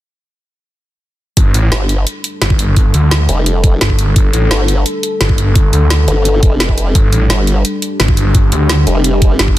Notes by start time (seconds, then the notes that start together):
1.37 G1 G3 D4 A4, kick, closed hi-hat
1.54 A1, closed hi-hat
1.72 G1, snare, closed hi-hat
1.89 closed hi-hat
2.07 closed hi-hat
2.24 closed hi-hat
2.42 G1, snare, closed hi-hat
2.50 kick
2.59 G1, closed hi-hat
2.76 kick, closed hi-hat
2.94 D2, closed hi-hat
3.11 snare, closed hi-hat
3.29 F1, closed hi-hat
3.46 closed hi-hat
3.64 kick, closed hi-hat
3.81 G1, snare, closed hi-hat
3.90 kick
3.99 G1, closed hi-hat
4.16 G1, kick, closed hi-hat
4.33 A1, closed hi-hat
4.51 G1, snare, closed hi-hat
4.68 closed hi-hat
4.86 closed hi-hat
5.03 closed hi-hat
5.21 G1, snare, closed hi-hat
5.29 kick
5.38 G1, closed hi-hat
5.56 kick, closed hi-hat
5.73 D2, closed hi-hat
5.90 snare, closed hi-hat
6.08 G1, closed hi-hat
6.25 closed hi-hat
6.43 F1, kick, closed hi-hat
6.60 snare, closed hi-hat
6.69 kick
6.78 closed hi-hat
6.95 G1 G4, kick, closed hi-hat
7.12 A1, closed hi-hat
7.30 G1, snare, closed hi-hat
7.47 closed hi-hat
7.65 closed hi-hat
7.82 closed hi-hat
8.00 G1, snare, closed hi-hat
8.08 kick
8.17 G1, closed hi-hat
8.35 kick, closed hi-hat
8.52 D2, closed hi-hat
8.69 snare, closed hi-hat
8.87 F1, closed hi-hat
9.04 closed hi-hat
9.22 kick, closed hi-hat
9.39 G1, snare, closed hi-hat
9.48 kick